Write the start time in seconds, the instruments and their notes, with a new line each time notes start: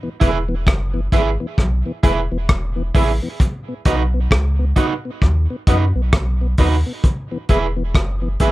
0.03 tonewheel organ E2 B2
0.20 sub bass E1, tonewheel organ G#3 B3 E4, clean electric guitar E4 G#4 B4, kick, closed hi-hat
0.48 tonewheel organ E2 B2
0.67 sub bass F#1, kick, cross-stick
0.94 tonewheel organ E2 B2
1.12 sub bass G#1, tonewheel organ G#3 B3 E4, clean electric guitar E4 G#4 B4, kick, closed hi-hat
1.40 tonewheel organ E2 B2
1.58 sub bass B1, kick, cross-stick
1.85 tonewheel organ E2 B2
2.03 sub bass E1, tonewheel organ G#3 B3 E4, clean electric guitar E4 G#4 B4, kick, closed hi-hat
2.31 sub bass E1, tonewheel organ E2 B2
2.49 sub bass E1, kick, cross-stick
2.76 tonewheel organ E2 B2
2.95 sub bass A1, tonewheel organ G#3 B3 E4, clean electric guitar E4 G#4 B4, kick, open hi-hat
3.22 tonewheel organ E2 B2
3.40 kick, hi-hat pedal
3.68 tonewheel organ B2
3.85 sub bass B1, tonewheel organ F#3 B3 D#4, clean electric guitar D#4 F#4 B4, kick, closed hi-hat
4.14 tonewheel organ B2
4.31 sub bass C#2, kick, cross-stick
4.59 tonewheel organ B2
4.76 tonewheel organ F#3 B3 D#4, clean electric guitar D#4 F#4 B4, kick, closed hi-hat
5.05 tonewheel organ B2
5.22 sub bass D#2, kick, cross-stick
5.50 tonewheel organ B2
5.67 sub bass F#2, tonewheel organ F#3 B3 D#4, clean electric guitar D#4 F#4 B4, kick, closed hi-hat
5.95 sub bass B1, tonewheel organ B2
6.13 sub bass B1, kick, cross-stick
6.41 tonewheel organ B2
6.58 sub bass D#2, tonewheel organ F#3 B3 D#4, clean electric guitar D#4 F#4 B4, kick, open hi-hat
6.86 tonewheel organ B2
7.04 kick, hi-hat pedal
7.31 tonewheel organ E2 B2
7.49 sub bass E1, tonewheel organ G#3 B3 E4, clean electric guitar E4 G#4 B4, kick, closed hi-hat
7.76 tonewheel organ E2 B2
7.95 sub bass F#1, kick, cross-stick
8.22 tonewheel organ E2 B2
8.40 sub bass G#1, tonewheel organ G#3 B3 E4, clean electric guitar E4 G#4 B4, kick, closed hi-hat